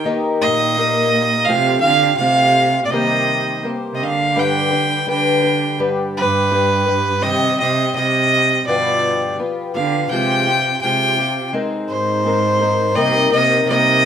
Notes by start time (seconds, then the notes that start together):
0.04 D#3 A#3 D#4 G4 A#4
0.42 A#2 D#5
0.76 A#3 D#4 G4 A#4
1.45 C3 F3 A3 F5
1.49 C4 F4 G4
1.80 D3 F5
1.84 C4 F4 G4
2.17 C3 A3 C4 F5
2.21 F4 G4
2.85 A#2 D5
2.91 C3 D#3 G3 A#3 G4 C5 D#5
3.62 G3 A#3 G4 C5
3.93 C3 D#5
4.02 D3 F5
4.35 G2 D3 G3 D4 G4 B4
4.39 G5
4.70 G3 D4 G4 B4
5.06 D3 G3 D4 G4 B4 G5
5.42 G3 D4 G4 B4
5.78 G2 D3 G3 D4 G4 B4
6.17 G2 B4
6.51 G3 D4 G4 B4
6.86 G3 D4 G4 B4
7.22 C3 D#3 G3 C4 G4 D#5
7.60 C3 G3 C4 G4 D#5
7.95 C3 G3 C4 G4 D#5
8.66 G2 B2 D3 F3 B3 F4 G4 D5
9.38 F3 B3 F4 G4
9.74 D3 F3 B3 F4 G4 F5
10.11 C3 F3 G#3 C4 F4 G4 G5
10.47 C4 F4 G4
10.81 C3 G#3 C4 F4 G5
10.86 G4
11.18 C4 F4 G4
11.53 G#3 C4 D#4 A#4
11.89 G#2 C5
12.24 G#3 C4 D#4 A#4
12.60 C4 D#4 A#4
12.95 C3 G3 A#3 D#4 A#4 D#5
13.31 C3 A#3 D#4 A#4 D#5
13.66 C3 G3 D#5
13.70 A#3 D#4 A#4